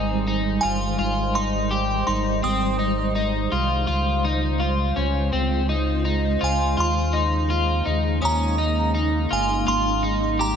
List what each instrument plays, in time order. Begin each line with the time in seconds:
Already playing: sub bass G#1, ambient pad D#3 G3 G#3 C5, clean electric guitar D#4, synth bell G#5
0.27 clean electric guitar D#4
0.61 sub bass G1, clean electric guitar F4, synth bell G#5
0.99 sub bass G#1, clean electric guitar F4
1.35 clean electric guitar D#4, synth bell C6
1.71 clean electric guitar G4
2.07 sub bass G#1, clean electric guitar D#4, synth bell C6
2.43 sub bass G#1, clean electric guitar C4, synth bell D#6
2.79 clean electric guitar D#4
3.15 clean electric guitar D#4
3.52 sub bass C2, clean electric guitar F4
3.87 sub bass C#2, ambient pad C#3 F4, clean electric guitar F4
4.25 clean electric guitar D#4
4.60 clean electric guitar F4
4.96 sub bass C#2, clean electric guitar C#4
5.33 sub bass C#2, clean electric guitar C4
5.69 clean electric guitar D#4
6.05 clean electric guitar D#4
6.41 sub bass C#2, clean electric guitar F4, synth bell G#5
6.77 sub bass D#2, ambient pad C#3 A#3 D#4, clean electric guitar F4, synth bell C6
7.13 clean electric guitar D#4
7.50 clean electric guitar F4
7.86 sub bass D#2, clean electric guitar D#4
8.22 sub bass D#2, clean electric guitar C#4, synth bell A#5, glockenspiel D#6
8.58 clean electric guitar D#4
8.95 clean electric guitar D#4
9.31 sub bass G1, clean electric guitar F4, synth bell G#5
9.67 sub bass G#1, ambient pad C3 G3, clean electric guitar F4, synth bell C6
10.03 clean electric guitar D#4
10.39 clean electric guitar G4, synth bell A#5